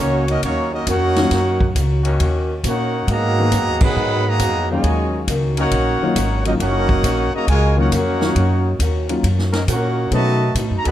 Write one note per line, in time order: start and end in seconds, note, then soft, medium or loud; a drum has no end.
0.00 0.41 C#2 loud
0.00 0.22 D#3 loud
0.00 0.30 D#3 medium
0.00 0.28 F#3 loud
0.00 0.22 A#3 medium
0.00 0.28 A#3 medium
0.00 0.29 A#3 medium
0.00 0.31 A#3 medium
0.00 0.22 C#4 medium
0.00 0.28 C#4 medium
0.00 0.31 C#4 medium
0.00 0.29 D#4 medium
0.00 0.22 F#4 loud
0.00 0.27 F#4 medium
0.00 0.31 F#4 medium
0.00 0.29 C#5 loud
0.28 0.42 F#3 medium
0.28 0.42 A#3 medium
0.28 0.42 C#4 medium
0.28 0.42 D#4 medium
0.28 0.42 F#4 medium
0.28 0.42 A#4 medium
0.28 0.42 D#5 loud
0.28 ride medium
0.42 0.85 D#2 loud
0.42 0.74 D#3 medium
0.42 0.71 F#3 medium
0.42 0.70 A#3 medium
0.42 0.71 A#3 medium
0.42 0.75 A#3 medium
0.42 0.71 C#4 medium
0.42 0.75 C#4 medium
0.42 0.71 D#4 medium
0.42 0.70 F#4 medium
0.42 0.75 F#4 medium
0.42 0.71 C#5 loud
0.42 kick soft
0.42 ride medium
0.73 0.87 F#3 medium
0.73 0.87 A#3 medium
0.73 0.88 C#4 medium
0.73 0.87 D#4 medium
0.73 0.88 F#4 medium
0.73 0.87 A#4 medium
0.73 0.88 D#5 medium
0.87 1.30 F2 medium
0.87 1.18 D#3 medium
0.87 1.18 A#3 medium
0.87 1.72 A#3 medium
0.87 1.72 C#4 medium
0.87 1.18 C#4 medium
0.87 1.72 D#4 medium
0.87 1.71 F#4 medium
0.87 1.19 F#4 medium
0.87 1.72 A#4 medium
0.87 1.72 C#5 medium
0.87 1.72 F#5 loud
0.87 kick soft
0.87 hi-hat pedal medium
0.87 ride medium
1.16 1.30 D#3 medium
1.16 1.31 F#3 medium
1.16 1.31 A#3 medium
1.16 1.31 C#4 medium
1.16 1.31 F4 medium
1.16 snare medium
1.16 ride medium
1.31 1.74 F#2 medium
1.31 1.62 D#3 medium
1.31 1.62 A#3 medium
1.31 1.63 C#4 medium
1.31 1.63 F#4 medium
1.31 kick soft
1.31 snare soft
1.31 ride medium
1.60 kick medium
1.75 2.18 C#2 loud
1.75 2.07 D#3 medium
1.75 2.07 A#3 medium
1.75 2.07 C#4 medium
1.75 2.07 F#4 medium
1.75 kick soft
1.75 hi-hat pedal medium
1.75 ride medium
2.04 2.60 D#3 loud
2.04 2.60 A#3 loud
2.04 2.60 C#4 loud
2.04 2.60 F#4 loud
2.04 ride medium
2.20 2.62 D#2 medium
2.20 2.51 D#3 medium
2.20 2.51 A#3 medium
2.20 2.52 C#4 medium
2.20 2.52 F#4 medium
2.20 kick soft
2.20 ride medium
2.64 3.06 A#2 medium
2.64 2.95 D#3 medium
2.64 2.95 A#3 medium
2.64 3.06 A#3 medium
2.64 3.05 C#4 medium
2.64 2.95 C#4 medium
2.64 3.06 F#4 medium
2.64 2.96 F#4 medium
2.64 3.06 C#5 medium
2.64 kick soft
2.64 hi-hat pedal medium
2.64 ride medium
2.68 3.07 D#4 medium
2.68 3.07 A#4 medium
2.68 3.07 F#5 medium
3.07 3.50 G#2 medium
3.07 3.39 G#2 medium
3.07 3.78 D#3 loud
3.07 3.77 F#3 medium
3.07 3.40 F#3 medium
3.07 3.77 A#3 loud
3.07 3.40 B3 medium
3.07 3.79 G#4 medium
3.07 3.79 D#5 medium
3.07 3.79 F#5 medium
3.07 3.78 A#5 loud
3.07 kick soft
3.07 ride medium
3.11 3.40 D#4 medium
3.38 3.51 D#3 medium
3.38 3.51 G#3 medium
3.38 3.51 A#3 medium
3.38 3.52 B3 medium
3.38 3.52 F#4 medium
3.52 3.68 F#2 loud
3.52 3.83 G#2 medium
3.52 3.83 F#3 medium
3.52 3.83 B3 medium
3.52 3.83 D#4 medium
3.52 kick soft
3.52 hi-hat pedal medium
3.52 ride medium
3.68 3.81 D#2 medium
3.80 3.95 B1 medium
3.80 4.26 D#3 loud
3.80 4.36 F#3 loud
3.80 4.25 F#3 loud
3.80 4.37 B3 medium
3.80 4.26 B3 loud
3.80 4.36 D#4 medium
3.80 4.37 G#4 loud
3.80 4.27 G#4 loud
3.80 kick loud
3.80 crash medium
3.84 4.27 D#5 loud
3.84 4.27 F#5 loud
3.84 4.27 B5 loud
3.96 4.39 G#2 loud
3.96 4.27 G#2 soft
3.96 4.27 F#3 medium
3.96 4.27 B3 soft
3.96 4.28 D#4 medium
4.26 4.70 D#3 medium
4.26 4.70 F#3 medium
4.26 4.70 A#3 medium
4.26 4.71 G#4 medium
4.26 4.71 D#5 medium
4.26 4.71 F#5 medium
4.26 4.71 A#5 loud
4.39 4.82 F2 medium
4.39 4.71 G#2 medium
4.39 4.71 F#3 medium
4.39 4.71 B3 medium
4.39 4.72 D#4 medium
4.39 kick soft
4.39 hi-hat pedal medium
4.39 ride medium
4.70 5.24 A#2 medium
4.70 5.24 C#3 medium
4.70 5.26 D#3 medium
4.70 5.26 F#3 medium
4.70 5.24 G#3 medium
4.70 5.26 A#3 medium
4.70 5.26 C#4 medium
4.70 5.25 F#4 medium
4.70 5.25 C#5 medium
4.70 5.25 D#5 medium
4.70 5.26 F5 medium
4.70 5.25 G#5 medium
4.83 5.26 D#2 medium
4.83 5.15 D#3 soft
4.83 5.15 A#3 medium
4.83 5.16 C#4 medium
4.83 5.16 F#4 medium
4.83 kick soft
4.83 ride medium
5.28 5.70 C#2 loud
5.28 5.59 D#3 medium
5.28 5.60 A#3 medium
5.28 5.60 C#4 medium
5.28 5.60 F#4 medium
5.28 kick soft
5.28 hi-hat pedal medium
5.28 ride medium
5.57 6.13 F#3 medium
5.57 6.42 A#3 medium
5.57 6.14 C#4 medium
5.57 6.42 C#4 medium
5.57 6.13 D#4 medium
5.57 6.42 D#4 medium
5.57 6.42 F#4 medium
5.57 6.13 A#4 loud
5.57 6.42 A#4 medium
5.57 6.42 C#5 medium
5.57 6.42 F#5 loud
5.57 ride medium
5.71 5.99 A#1 loud
5.71 6.03 D#3 medium
5.71 6.04 A#3 medium
5.71 6.04 C#4 medium
5.71 6.04 F#4 medium
5.71 kick soft
5.71 ride medium
6.02 6.15 D#3 medium
6.02 6.15 F#3 medium
6.02 6.15 A#3 medium
6.02 6.16 C#4 medium
6.02 6.16 F4 medium
6.02 muted upright bass stroke soft
6.16 6.59 G#1 loud
6.16 6.47 D#3 medium
6.16 6.47 A#3 medium
6.16 6.47 C#4 medium
6.16 6.47 F#4 medium
6.16 kick soft
6.16 hi-hat pedal medium
6.16 ride medium
6.45 6.59 D#3 medium
6.45 6.52 F#3 medium
6.45 6.59 F#3 medium
6.45 6.52 A#3 medium
6.45 6.59 A#3 medium
6.45 6.53 C#4 medium
6.45 6.59 C#4 medium
6.45 6.52 D#4 medium
6.45 6.59 F4 medium
6.45 6.53 F#4 medium
6.45 6.53 A#4 medium
6.45 6.53 D#5 medium
6.45 ride medium
6.60 7.02 F#1 medium
6.60 6.91 D#3 soft
6.60 7.29 A#3 loud
6.60 6.91 A#3 medium
6.60 7.30 C#4 loud
6.60 6.92 C#4 medium
6.60 7.30 D#4 loud
6.60 7.29 F#4 medium
6.60 6.92 F#4 medium
6.60 7.30 A#4 medium
6.60 7.30 C#5 medium
6.60 7.30 F#5 loud
6.60 kick soft
6.60 ride medium
6.89 kick medium
7.03 7.31 A#1 loud
7.03 7.34 D#3 medium
7.03 7.35 A#3 medium
7.03 7.35 C#4 medium
7.03 7.35 F#4 medium
7.03 kick soft
7.03 hi-hat pedal medium
7.03 ride medium
7.33 7.48 C#3 medium
7.33 7.48 F#3 medium
7.33 7.90 F#3 medium
7.33 7.48 A#3 medium
7.33 7.90 C#4 medium
7.33 7.90 D#4 medium
7.33 7.49 F#4 loud
7.33 7.90 A#4 medium
7.33 7.48 C#5 loud
7.33 7.48 D#5 medium
7.33 7.49 A#5 loud
7.33 muted upright bass stroke soft
7.47 7.90 C#2 loud
7.47 7.79 D#3 soft
7.47 7.76 G#3 medium
7.47 7.79 A#3 medium
7.47 7.80 C#4 medium
7.47 7.76 F4 loud
7.47 7.80 F#4 medium
7.47 7.76 A#4 loud
7.47 7.76 C#5 loud
7.47 7.76 G#5 loud
7.47 kick soft
7.47 ride medium
7.77 7.90 D#3 medium
7.77 7.91 F#3 medium
7.77 7.91 A#3 medium
7.77 7.91 C#4 medium
7.77 7.92 C#4 medium
7.77 7.92 D#4 medium
7.77 7.91 F4 medium
7.77 7.92 F#4 medium
7.77 7.92 A#4 medium
7.77 7.92 C#5 medium
7.77 7.91 F#5 medium
7.91 8.34 F2 loud
7.91 8.23 D#3 medium
7.91 8.23 A#3 medium
7.91 8.78 A#3 medium
7.91 8.23 C#4 medium
7.91 8.77 D#4 medium
7.91 8.24 F#4 medium
7.91 8.78 F#4 medium
7.91 8.77 A#4 medium
7.91 8.77 C#5 medium
7.91 8.76 F#5 loud
7.91 kick soft
7.91 hi-hat pedal medium
7.91 ride medium
7.96 8.78 C#4 medium
8.21 8.34 D#3 medium
8.21 8.34 F#3 medium
8.21 8.35 A#3 medium
8.21 8.35 C#4 medium
8.21 8.35 F4 medium
8.21 snare medium
8.35 8.78 F#2 medium
8.35 8.67 D#3 soft
8.35 8.67 A#3 medium
8.35 8.68 C#4 medium
8.35 8.68 F#4 medium
8.35 kick soft
8.35 ride medium
8.79 9.22 D#2 loud
8.79 9.11 D#3 medium
8.79 9.11 A#3 medium
8.79 9.11 C#4 medium
8.79 9.12 F#4 medium
8.79 kick soft
8.79 hi-hat pedal medium
8.79 ride medium
9.09 9.22 D#3 medium
9.09 9.22 F#3 medium
9.09 9.22 A#3 medium
9.09 9.23 C#4 medium
9.09 9.23 F4 medium
9.09 ride medium
9.23 9.66 F#2 medium
9.23 9.55 D#3 medium
9.23 9.55 A#3 medium
9.23 9.56 C#4 medium
9.23 9.56 F#4 medium
9.23 kick soft
9.23 ride medium
9.39 snare soft
9.52 9.63 F#3 medium
9.52 9.63 C#4 medium
9.52 9.63 D#4 medium
9.52 9.63 A#4 loud
9.52 snare soft
9.52 ride medium
9.67 10.11 A#2 medium
9.67 9.99 D#3 medium
9.67 9.99 A#3 medium
9.67 10.10 A#3 medium
9.67 10.09 C#4 medium
9.67 10.00 C#4 medium
9.67 10.10 D#4 medium
9.67 10.10 F#4 medium
9.67 10.00 F#4 medium
9.67 10.10 A#4 medium
9.67 10.10 C#5 medium
9.67 10.09 F#5 medium
9.67 kick soft
9.67 hi-hat pedal medium
9.67 ride medium
10.11 10.54 B2 medium
10.11 10.43 B2 soft
10.11 10.54 D#3 medium
10.11 10.38 F#3 medium
10.11 10.53 F#3 medium
10.11 10.38 A3 medium
10.11 10.43 A3 medium
10.11 10.54 A3 loud
10.11 10.39 B3 medium
10.11 10.39 C#4 medium
10.11 10.39 D#4 medium
10.11 10.44 D#4 medium
10.11 10.54 F#4 loud
10.11 10.44 F#4 medium
10.11 10.54 B4 medium
10.11 10.54 D#5 loud
10.11 10.53 A5 loud
10.11 kick soft
10.11 ride medium
10.55 10.72 A2 loud
10.55 10.87 B2 medium
10.55 10.88 A3 medium
10.55 10.88 D#4 medium
10.55 10.88 F#4 medium
10.55 kick soft
10.55 hi-hat pedal medium
10.55 ride medium
10.70 10.85 F#2 medium
10.78 10.86 A#5 medium
10.85 10.91 D#2 medium
10.85 10.91 D#3 medium
10.85 10.91 F#3 medium
10.85 10.91 F#3 loud
10.85 10.91 B3 loud
10.85 10.91 B3 medium
10.85 10.91 D#4 medium
10.85 10.91 A4 loud
10.85 10.91 D#5 loud
10.85 10.91 F#5 loud
10.85 10.91 B5 loud
10.85 ride medium